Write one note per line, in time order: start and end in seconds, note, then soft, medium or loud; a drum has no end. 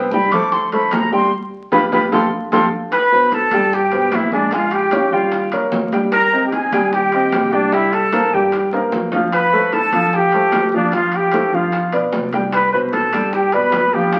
0.00 0.26 C2 medium
0.00 0.13 G5 medium
0.11 0.29 G3 medium
0.11 0.30 G4 medium
0.11 0.30 G5 medium
0.11 0.33 B5 loud
0.11 high bongo medium
0.11 high conga medium
0.32 0.88 D2 medium
0.32 0.66 A3 medium
0.32 0.66 A4 medium
0.32 0.66 C5 medium
0.32 0.54 D6 loud
0.32 high conga soft
0.32 low conga medium
0.32 high timbale loud
0.52 0.73 C6 loud
0.52 high bongo medium
0.52 high conga soft
0.72 1.05 A3 medium
0.72 1.06 A4 medium
0.72 1.06 C5 medium
0.72 0.94 B5 loud
0.72 high bongo soft
0.72 high conga soft
0.72 high timbale medium
0.91 1.29 G1 medium
0.91 1.13 A#5 medium
0.91 high bongo medium
0.91 low bongo medium
0.91 high conga medium
0.91 high timbale medium
0.91 low timbale medium
1.12 1.29 G3 medium
1.12 1.29 G4 medium
1.12 1.29 G5 medium
1.12 1.31 C6 loud
1.12 high bongo soft
1.12 high conga medium
1.72 1.87 G1 medium
1.72 1.85 F4 medium
1.72 1.85 G4 medium
1.72 1.85 B4 medium
1.72 1.85 B5 loud
1.72 low bongo loud
1.72 high conga medium
1.72 high timbale loud
1.92 2.07 G1 medium
1.92 2.05 F4 loud
1.92 2.05 G4 medium
1.92 2.05 B4 loud
1.92 2.05 B5 loud
1.92 low bongo loud
1.92 high conga medium
1.92 high timbale loud
2.12 2.27 F2 medium
2.12 2.25 F4 medium
2.12 2.25 G4 loud
2.12 2.25 A4 medium
2.12 2.26 C6 loud
2.12 low bongo loud
2.12 high conga loud
2.12 high timbale loud
2.52 2.67 F2 medium
2.52 2.65 F4 loud
2.52 2.65 G4 medium
2.52 2.65 A4 loud
2.52 2.65 C6 medium
2.52 low bongo loud
2.52 high conga medium
2.52 high timbale loud
2.92 3.35 B4 loud
2.92 3.36 B5 medium
2.92 high bongo medium
2.92 high conga soft
2.92 high timbale medium
3.12 3.45 B2 medium
3.12 3.45 B4 medium
3.12 3.45 C5 medium
3.12 high conga soft
3.32 3.76 A4 medium
3.32 3.76 A5 medium
3.32 high bongo medium
3.32 high conga medium
3.32 high timbale medium
3.32 low timbale medium
3.51 4.08 G2 medium
3.51 3.85 G3 medium
3.51 3.85 G4 medium
3.51 3.86 G5 medium
3.51 high conga medium
3.51 high timbale medium
3.72 4.16 G4 loud
3.72 4.17 G5 medium
3.72 high bongo medium
3.72 high conga soft
3.91 4.25 B2 medium
3.91 4.25 B4 medium
3.91 4.26 C5 medium
3.91 high conga soft
3.91 high timbale medium
4.12 5.06 A#1 medium
4.12 4.32 E4 medium
4.12 4.34 E5 medium
4.12 high bongo medium
4.12 low bongo medium
4.12 high conga medium
4.12 high timbale medium
4.12 low timbale medium
4.32 4.49 G#3 medium
4.32 4.55 D4 medium
4.32 4.49 G#4 medium
4.32 4.56 D5 medium
4.32 4.49 G#5 medium
4.32 high conga medium
4.51 4.85 G#3 medium
4.51 4.74 F4 medium
4.51 4.85 G#4 medium
4.51 4.77 F5 medium
4.51 4.86 G#5 medium
4.51 high bongo medium
4.51 high timbale medium
4.71 5.14 G4 medium
4.71 5.15 G5 medium
4.71 high bongo soft
4.71 high conga soft
4.71 high timbale medium
4.91 5.09 C#4 medium
4.91 5.09 C#5 medium
4.91 5.09 F5 medium
4.91 high bongo medium
4.91 high conga medium
4.91 high timbale medium
4.91 low timbale medium
5.12 5.49 D#2 medium
5.12 5.45 G3 medium
5.12 5.53 F4 medium
5.12 5.45 G4 medium
5.12 5.53 F5 medium
5.12 5.45 G5 medium
5.12 high bongo soft
5.12 high conga soft
5.32 high bongo medium
5.32 high conga soft
5.32 high timbale medium
5.52 5.71 A1 medium
5.52 5.85 A#3 medium
5.52 5.86 A#4 medium
5.52 5.86 C#5 medium
5.52 high conga soft
5.52 high timbale medium
5.72 6.66 G#1 medium
5.72 high bongo medium
5.72 low bongo medium
5.72 high conga medium
5.72 low timbale medium
5.92 6.25 G3 medium
5.92 6.25 G4 medium
5.92 6.26 G5 medium
5.92 high bongo soft
5.92 high conga medium
5.92 high timbale medium
6.12 6.43 A#4 loud
6.12 6.43 A#5 medium
6.12 high bongo medium
6.12 high conga soft
6.12 high timbale medium
6.32 6.66 C4 medium
6.32 6.66 C5 medium
6.32 6.66 D#5 medium
6.32 high conga soft
6.46 6.55 G4 medium
6.46 6.54 G5 medium
6.52 6.93 G#4 loud
6.52 6.92 G#5 medium
6.52 high bongo medium
6.52 high conga medium
6.52 high timbale medium
6.52 low timbale medium
6.72 7.28 D#2 medium
6.72 7.05 G3 medium
6.72 7.05 G4 medium
6.72 7.06 G5 medium
6.72 high conga medium
6.72 high timbale medium
6.93 7.54 G4 loud
6.93 7.54 G5 medium
6.93 high bongo medium
6.93 high conga soft
7.12 7.46 C4 medium
7.12 7.46 C5 medium
7.12 7.46 D#5 medium
7.12 high conga soft
7.12 high timbale medium
7.32 8.27 C2 medium
7.32 high bongo medium
7.32 low bongo medium
7.32 high conga medium
7.32 high timbale medium
7.32 low timbale medium
7.52 7.69 G3 medium
7.52 7.75 D4 medium
7.52 7.69 G4 medium
7.52 7.75 D5 medium
7.52 7.69 G5 medium
7.52 high conga medium
7.72 8.05 G3 medium
7.72 7.94 E4 medium
7.72 8.06 G4 medium
7.72 7.95 E5 medium
7.72 8.06 G5 medium
7.72 high bongo medium
7.72 high conga soft
7.72 high timbale medium
7.93 8.36 A4 loud
7.93 8.35 A5 medium
7.93 high bongo soft
7.93 high conga soft
7.93 high timbale medium
8.13 8.29 A#3 medium
8.13 8.29 A#4 medium
8.13 8.30 C5 medium
8.13 high bongo medium
8.13 high conga medium
8.13 high timbale medium
8.13 low timbale medium
8.33 8.89 G2 medium
8.33 8.66 G3 medium
8.33 8.66 G4 medium
8.33 8.73 G4 medium
8.33 8.73 G5 medium
8.33 8.66 G5 medium
8.33 high bongo soft
8.33 high conga soft
8.52 high bongo medium
8.52 high conga soft
8.52 high timbale medium
8.72 9.06 A#3 medium
8.72 9.06 A#4 medium
8.72 9.06 C5 medium
8.72 high conga soft
8.72 high timbale medium
8.92 9.87 F2 medium
8.92 high bongo medium
8.92 low bongo medium
8.92 high conga medium
8.92 low timbale medium
9.12 9.46 F3 medium
9.12 9.46 F4 medium
9.12 9.46 F5 medium
9.12 high bongo soft
9.12 high conga medium
9.12 low timbale medium
9.32 9.75 B4 loud
9.32 9.75 B5 medium
9.32 high bongo medium
9.32 high timbale medium
9.53 9.86 A3 medium
9.53 9.86 A4 medium
9.53 9.86 C5 medium
9.53 high conga soft
9.72 10.16 A4 medium
9.72 10.16 A5 medium
9.72 high bongo medium
9.72 high conga medium
9.72 high timbale medium
9.72 low timbale medium
9.92 10.49 A2 medium
9.92 10.26 F3 medium
9.92 10.26 F4 medium
9.92 10.26 F5 medium
9.92 high conga medium
9.92 high timbale medium
10.13 10.74 G4 loud
10.13 10.73 G5 medium
10.13 high bongo medium
10.13 high conga soft
10.32 10.66 A3 medium
10.32 10.66 A4 medium
10.32 10.67 C5 medium
10.32 high conga soft
10.32 high timbale medium
10.52 11.47 D2 medium
10.52 high bongo medium
10.52 low bongo medium
10.52 high conga medium
10.52 high timbale medium
10.52 low timbale medium
10.72 10.90 F3 medium
10.72 10.93 D4 medium
10.72 10.90 F4 medium
10.72 10.93 D5 medium
10.72 10.90 F5 medium
10.72 high conga medium
10.92 11.26 F3 medium
10.92 11.26 F4 medium
10.92 11.17 F4 medium
10.92 11.26 F5 medium
10.92 11.16 F5 medium
10.92 high bongo medium
10.92 high conga soft
10.92 high timbale medium
11.12 11.56 G5 medium
11.12 high bongo soft
11.12 high conga soft
11.12 high timbale medium
11.16 11.57 G4 loud
11.32 11.49 A3 medium
11.32 11.50 A4 medium
11.32 11.50 C5 medium
11.32 high bongo medium
11.32 high conga medium
11.32 high timbale medium
11.32 low timbale medium
11.52 11.90 G1 medium
11.52 11.86 F3 medium
11.52 11.86 F4 medium
11.52 11.94 F4 medium
11.52 11.86 F5 medium
11.52 11.94 F5 medium
11.52 high bongo soft
11.52 high conga soft
11.72 high bongo medium
11.72 high conga soft
11.72 high timbale medium
11.92 12.11 B1 medium
11.92 12.26 B3 medium
11.92 12.26 B4 medium
11.92 12.26 D5 medium
11.92 high conga soft
11.92 high timbale medium
12.12 13.07 C2 medium
12.12 high bongo medium
12.12 low bongo medium
12.12 high conga medium
12.12 low timbale medium
12.33 12.66 G3 medium
12.33 12.66 G4 medium
12.33 12.66 G5 medium
12.33 high bongo soft
12.33 high conga medium
12.33 high timbale medium
12.52 12.72 B4 medium
12.52 12.72 B5 medium
12.52 high bongo medium
12.52 high conga soft
12.52 high timbale medium
12.72 13.06 B2 medium
12.72 12.81 B4 medium
12.72 13.06 B4 medium
12.72 13.06 C5 medium
12.72 12.79 B5 medium
12.72 high conga soft
12.92 13.35 A4 medium
12.92 13.36 A5 medium
12.92 high bongo medium
12.92 high conga medium
12.92 high timbale medium
12.92 low timbale medium
13.13 13.69 G2 medium
13.13 13.46 G3 medium
13.13 13.46 G4 medium
13.13 13.46 G5 medium
13.13 high conga medium
13.13 high timbale medium
13.33 13.55 G4 medium
13.33 13.55 G5 medium
13.33 high bongo medium
13.33 high conga soft
13.52 13.86 B2 medium
13.52 13.95 B4 loud
13.52 13.86 B4 medium
13.52 13.86 D5 medium
13.52 13.95 B5 medium
13.52 high conga soft
13.52 high timbale medium
13.72 14.20 D2 medium
13.72 high bongo medium
13.72 low bongo medium
13.72 high conga medium
13.72 high timbale medium
13.72 low timbale medium
13.93 14.10 F3 medium
13.93 14.10 F4 medium
13.93 14.20 G4 loud
13.93 14.10 F5 medium
13.93 14.20 G5 medium
13.93 high conga medium
14.13 14.20 F3 medium
14.13 14.20 F4 medium
14.13 14.20 F5 medium
14.13 high bongo medium
14.13 high conga soft
14.13 high timbale medium